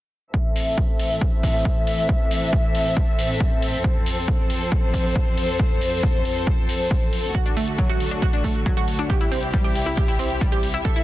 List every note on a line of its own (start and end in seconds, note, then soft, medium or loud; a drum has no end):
0.34 3.81 A2 medium
0.34 3.81 E3 medium
0.34 7.31 C4 medium
0.34 9.06 A4 medium
0.34 3.81 E5 medium
0.34 kick loud
0.56 open hi-hat medium
0.78 kick loud
1.00 open hi-hat medium
1.21 kick loud
1.43 kick medium
1.43 open hi-hat medium
1.65 kick loud
1.87 open hi-hat medium
2.09 kick loud
2.31 open hi-hat loud
2.53 kick loud
2.75 open hi-hat loud
2.97 kick loud
3.19 open hi-hat loud
3.41 kick loud
3.62 open hi-hat loud
3.84 7.31 F2 medium
3.84 7.31 F3 medium
3.84 7.31 C5 medium
3.84 kick loud
4.06 open hi-hat loud
4.28 kick loud
4.50 open hi-hat loud
4.72 kick loud
4.94 kick medium
4.94 open hi-hat loud
5.16 kick loud
5.38 open hi-hat loud
5.60 kick loud
5.81 open hi-hat loud
6.03 kick loud
6.25 open hi-hat loud
6.47 kick loud
6.69 open hi-hat loud
6.91 kick loud
7.13 open hi-hat loud
7.35 9.08 D2 medium
7.35 9.08 D3 medium
7.35 9.08 A3 medium
7.35 7.39 F#4 medium
7.35 9.08 F#4 medium
7.35 kick loud
7.35 closed hi-hat medium
7.46 7.50 D4 medium
7.46 closed hi-hat soft
7.57 7.64 A3 medium
7.57 open hi-hat medium
7.68 closed hi-hat soft
7.78 7.86 F#3 medium
7.78 kick loud
7.78 closed hi-hat medium
7.89 7.96 F#4 medium
7.89 closed hi-hat soft
8.00 open hi-hat loud
8.11 8.18 D4 medium
8.11 closed hi-hat soft
8.22 8.26 F#4 medium
8.22 kick loud
8.22 closed hi-hat medium
8.33 8.37 D4 medium
8.33 closed hi-hat soft
8.44 8.51 A3 medium
8.44 kick medium
8.44 open hi-hat loud
8.55 closed hi-hat soft
8.66 8.73 F#3 medium
8.66 kick loud
8.66 closed hi-hat medium
8.77 8.84 F#4 medium
8.77 closed hi-hat soft
8.88 open hi-hat medium
8.99 9.06 D4 medium
8.99 closed hi-hat soft
9.10 10.83 C2 medium
9.10 10.83 C3 medium
9.10 10.83 G3 medium
9.10 10.83 E4 medium
9.10 9.14 G4 medium
9.10 10.83 G4 medium
9.10 kick loud
9.10 closed hi-hat medium
9.21 9.25 E4 medium
9.21 closed hi-hat soft
9.32 9.39 C4 medium
9.32 open hi-hat medium
9.43 closed hi-hat soft
9.54 9.61 G3 medium
9.54 kick loud
9.54 closed hi-hat medium
9.64 9.72 G4 medium
9.64 closed hi-hat soft
9.75 open hi-hat loud
9.86 9.93 E4 medium
9.86 closed hi-hat soft
9.97 10.02 G4 medium
9.97 kick loud
9.97 closed hi-hat medium
10.08 10.13 E4 medium
10.08 closed hi-hat soft
10.19 10.26 C4 medium
10.19 open hi-hat medium
10.30 closed hi-hat soft
10.41 10.48 G3 medium
10.41 kick loud
10.41 closed hi-hat medium
10.52 10.59 G4 medium
10.52 closed hi-hat soft
10.63 open hi-hat medium
10.74 10.81 E4 medium
10.74 closed hi-hat soft
10.85 11.04 A2 medium
10.85 11.04 E3 medium
10.85 11.04 C4 medium
10.85 10.89 A4 medium
10.85 11.04 A4 medium
10.85 11.04 E5 medium
10.85 kick loud
10.85 closed hi-hat medium
10.85 riser medium
10.96 11.00 E4 medium
10.96 closed hi-hat soft